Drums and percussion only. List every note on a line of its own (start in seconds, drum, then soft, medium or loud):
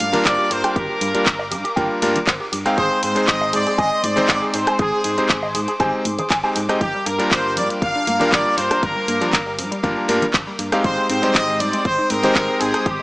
0.00 open hi-hat loud
0.00 high conga medium
0.14 closed hi-hat medium
0.14 low conga medium
0.25 kick loud
0.25 clap loud
0.25 closed hi-hat medium
0.51 open hi-hat loud
0.64 cross-stick medium
0.64 closed hi-hat medium
0.76 kick loud
0.76 closed hi-hat medium
1.01 open hi-hat loud
1.15 closed hi-hat medium
1.26 kick loud
1.26 clap loud
1.26 closed hi-hat medium
1.52 open hi-hat loud
1.65 closed hi-hat medium
1.77 kick loud
1.77 closed hi-hat medium
2.02 open hi-hat loud
2.02 high conga medium
2.16 closed hi-hat medium
2.16 low conga medium
2.27 kick loud
2.27 clap loud
2.27 closed hi-hat medium
2.53 open hi-hat loud
2.66 cross-stick medium
2.66 closed hi-hat medium
2.78 kick loud
2.78 closed hi-hat medium
3.03 open hi-hat loud
3.16 closed hi-hat medium
3.27 kick loud
3.27 clap loud
3.27 closed hi-hat medium
3.53 open hi-hat loud
3.67 closed hi-hat medium
3.79 kick loud
3.79 closed hi-hat medium
4.04 open hi-hat loud
4.04 high conga medium
4.17 closed hi-hat medium
4.17 low conga medium
4.28 kick loud
4.28 clap loud
4.28 closed hi-hat soft
4.54 open hi-hat loud
4.67 cross-stick medium
4.67 closed hi-hat medium
4.79 kick loud
4.79 closed hi-hat soft
5.04 open hi-hat loud
5.18 closed hi-hat medium
5.29 kick loud
5.29 clap loud
5.29 closed hi-hat soft
5.55 open hi-hat loud
5.68 closed hi-hat medium
5.80 kick loud
5.80 closed hi-hat soft
6.05 open hi-hat loud
6.05 high conga medium
6.19 closed hi-hat medium
6.19 low conga medium
6.30 kick loud
6.30 clap loud
6.30 closed hi-hat soft
6.56 open hi-hat loud
6.69 cross-stick medium
6.69 closed hi-hat medium
6.81 kick loud
6.81 closed hi-hat medium
7.06 open hi-hat loud
7.20 closed hi-hat medium
7.31 kick loud
7.31 clap loud
7.31 closed hi-hat soft
7.57 open hi-hat loud
7.70 closed hi-hat medium
7.82 kick loud
7.82 closed hi-hat medium
8.07 open hi-hat loud
8.07 high conga medium
8.20 closed hi-hat medium
8.20 low conga medium
8.32 kick loud
8.32 clap loud
8.32 closed hi-hat soft
8.58 open hi-hat loud
8.71 cross-stick medium
8.71 closed hi-hat medium
8.83 kick loud
8.83 closed hi-hat medium
9.08 open hi-hat loud
9.22 closed hi-hat medium
9.33 kick loud
9.33 clap loud
9.33 closed hi-hat medium
9.59 open hi-hat loud
9.72 closed hi-hat medium
9.84 kick loud
9.84 closed hi-hat medium
10.09 open hi-hat loud
10.09 high conga medium
10.22 closed hi-hat medium
10.22 low conga medium
10.34 kick loud
10.34 clap loud
10.34 closed hi-hat medium
10.59 open hi-hat loud
10.72 cross-stick medium
10.72 closed hi-hat medium
10.84 kick loud
10.84 closed hi-hat medium
11.10 open hi-hat loud
11.23 closed hi-hat medium
11.35 kick loud
11.35 clap loud
11.35 closed hi-hat medium
11.60 open hi-hat loud
11.73 closed hi-hat medium
11.85 kick loud
11.85 closed hi-hat medium
12.10 open hi-hat loud
12.10 high conga medium
12.23 closed hi-hat medium
12.23 low conga medium
12.35 kick loud
12.35 clap loud
12.35 closed hi-hat medium
12.61 open hi-hat loud
12.74 cross-stick medium
12.74 closed hi-hat medium
12.86 kick loud
12.86 closed hi-hat medium